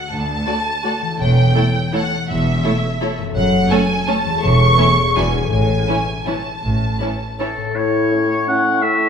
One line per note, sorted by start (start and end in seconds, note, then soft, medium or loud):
0.00 1.12 D3 soft
0.00 1.05 A3 soft
0.00 1.16 F#4 soft
0.00 1.18 D5 soft
0.00 0.11 F#5 medium
0.10 0.40 D2 soft
0.10 0.41 D2 soft
0.10 1.19 A5 medium
0.46 0.54 A3 soft
0.46 0.54 F#4 soft
0.46 0.55 A4 soft
0.46 0.55 D5 soft
0.83 0.92 A3 soft
0.83 0.91 F#4 soft
0.83 0.92 A4 soft
0.83 0.92 D5 soft
1.02 3.28 E3 soft
1.06 3.21 A3 soft
1.11 3.33 E4 soft
1.15 1.49 E2 soft
1.15 3.30 C#5 soft
1.19 1.49 E1 soft
1.19 1.92 G5 medium
1.55 1.63 A3 soft
1.55 1.63 E4 soft
1.55 1.64 A4 soft
1.55 1.64 C#5 soft
1.93 2.01 A3 soft
1.93 2.01 E4 soft
1.93 2.02 A4 soft
1.93 2.02 C#5 soft
1.93 2.28 F#5 medium
2.28 2.58 E1 soft
2.28 2.58 E2 medium
2.28 3.17 E5 medium
2.64 2.72 A3 soft
2.64 2.72 E4 soft
2.64 2.72 A4 soft
2.64 2.72 C#5 soft
3.01 3.09 A3 soft
3.01 3.09 E4 soft
3.01 3.09 A4 soft
3.01 3.09 C#5 soft
3.18 4.35 F#2 soft
3.22 4.28 A3 soft
3.27 5.12 C#4 soft
3.31 4.37 C#5 soft
3.31 3.68 F#5 medium
3.35 3.64 F#1 medium
3.35 3.65 F#2 medium
3.70 3.79 A3 medium
3.70 3.79 C#4 medium
3.70 3.78 A4 medium
3.70 3.78 C#5 medium
3.70 4.08 G#5 medium
4.07 4.16 A3 soft
4.07 4.15 C#4 soft
4.07 4.15 A4 soft
4.07 4.15 C#5 medium
4.07 4.42 A5 medium
4.25 4.97 E2 soft
4.29 5.10 A3 soft
4.34 5.05 E4 soft
4.38 4.72 E2 medium
4.38 5.15 C#5 soft
4.42 4.72 E1 medium
4.42 5.15 C#6 loud
4.78 4.86 A3 medium
4.78 4.86 C#4 medium
4.78 4.87 E4 soft
4.78 4.87 C#5 soft
4.98 5.44 E2 soft
5.02 5.46 F#3 soft
5.07 5.41 E4 soft
5.11 5.50 D5 soft
5.15 5.45 E1 medium
5.15 5.45 E2 soft
5.15 5.24 F#3 soft
5.15 5.24 D4 soft
5.15 5.24 E4 soft
5.15 5.25 B4 soft
5.15 5.50 G#5 medium
5.33 7.56 A2 soft
5.38 7.60 A3 soft
5.42 7.65 E4 soft
5.47 5.81 A1 medium
5.47 5.81 A2 soft
5.47 7.69 C#5 soft
5.51 6.25 G#5 medium
5.88 5.97 E3 soft
5.88 5.97 C#4 soft
5.88 5.96 E4 soft
5.88 5.96 C#5 soft
6.26 6.35 E3 soft
6.26 6.35 C#4 soft
6.26 6.34 E4 soft
6.26 6.35 C#5 soft
6.26 7.58 A5 medium
6.63 6.94 A1 soft
6.63 6.94 A2 soft
7.00 7.09 E3 soft
7.00 7.09 C#4 soft
7.00 7.08 E4 soft
7.00 7.09 C#5 soft
7.39 7.47 E3 soft
7.39 7.47 C#4 soft
7.39 7.48 E4 soft
7.39 7.77 A4 soft
7.39 7.47 C#5 soft
7.57 9.09 A2 soft
7.62 9.09 A3 soft
7.66 9.09 E4 soft
7.71 9.09 C#5 soft
7.75 9.09 A2 medium
7.75 8.50 E4 medium
7.75 8.47 C#5 medium
7.75 9.09 C#6 soft
8.11 8.24 A3 soft
8.11 8.25 C#4 soft
8.48 8.61 A3 soft
8.48 8.60 C#4 soft
8.48 8.82 C#4 soft
8.48 8.83 F#5 medium
8.82 9.09 A4 medium
8.82 9.09 E5 medium